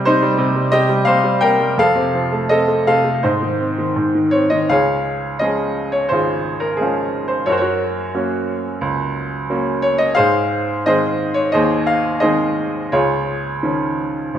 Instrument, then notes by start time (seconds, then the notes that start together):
grand piano
Already playing: C3 G3 G4 D#5
0.05 C3 D#4 C5
0.22 G3
0.38 C3
0.56 G3
0.71 C3 G4 D#5
0.89 G3
1.05 C3 C5 F5
1.24 G3
1.41 C3 A#4 G5
1.59 G3
1.78 F2 A4 F5
1.95 C3
2.15 F3
2.32 A3
2.49 C4 A4 D#5
2.68 A3
2.87 C3 A4 F5
3.05 A3
3.23 G#2 D#4 C5
3.42 D#3
3.60 C4
3.78 D#3
3.96 G#2
4.15 D#3
4.31 C4 C#5
4.50 D#3 D#5
4.69 C#2 G#4 C#5 F5
5.39 F3 G#3 C#4 D#5
5.43 G#4
5.92 C#5
6.09 G#1 G#4 C5
6.13 F4
6.60 A#4
6.77 F3 G#3 G#4
6.81 C#4 F4
7.28 C5
7.46 F#2 F#4 A#4 C#5
7.52 C5
7.58 C#5
7.62 F#4 A#4
8.14 F#3 A#3 C#4
8.81 C#2
9.50 F#3 A#3 C#4
9.82 C#5
9.98 D#5
10.15 G#2 G#4 C5 F5
10.86 D#3 G#3 C4 G#4 C5 D#5
11.34 C#5
11.52 D#2 G#4 C5 D#5
11.87 F5
12.20 D#3 G#3 G#4 C5 D#5
12.24 C4
12.92 C#2 F4 G#4 C#5
13.63 D#3 F3 C#4
14.34 G#1